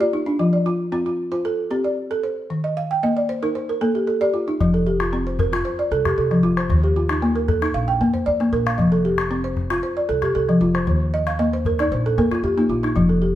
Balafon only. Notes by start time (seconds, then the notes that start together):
Already playing: G4
0.00 F4 D5
0.13 D#4
0.26 D4
0.39 F3 F4
0.53 D5
0.66 F4
0.92 C4 F4
1.06 F4
1.32 F4 C5
1.45 A4
1.71 C4 G4
1.84 D5
2.11 A4
2.23 C5
2.50 D#3
2.64 D#5
2.77 F5
2.91 G5
3.03 A#3 D#5
3.17 D5
3.29 C5
3.43 D#4 A#4
3.55 C5
3.69 A#4
3.81 A#3 A4
3.95 G4
4.07 A4
4.21 G4 D5
4.34 F4
4.48 D#4
4.61 F3
4.74 A4
4.87 G4
5.00 F4
5.13 C4
5.27 C5
5.39 A#4
5.53 F4
5.65 C5
5.79 D5
5.92 A4
6.05 G4
6.18 A4
6.31 F3
6.43 F4
6.57 C5
6.70 D#3
6.83 G4
6.96 F4
7.10 D#4
7.22 A#3
7.35 A#4
7.48 A4
7.62 D#4
7.74 F5
7.88 G5
8.01 A#3
8.14 C5
8.26 D5
8.40 A#3
8.53 A#4
8.66 F5
8.78 F3
8.92 A4
9.05 G4
9.31 C4
9.44 C5
9.71 F4
9.83 C5
9.97 D5
10.09 A4
10.23 G4
10.35 A4
10.49 F3
10.61 F4
10.75 C5
10.87 D#3
11.14 D#5
11.27 F5
11.39 A#3 D#5
11.53 C5
11.66 A#4
11.80 D#4 D5
11.92 C5
12.06 A4
12.18 A#3 A#4
12.31 F4
12.44 G4
12.58 A#3 D#4
12.70 F4
12.83 D#4
12.96 F3
13.09 A4
13.22 G4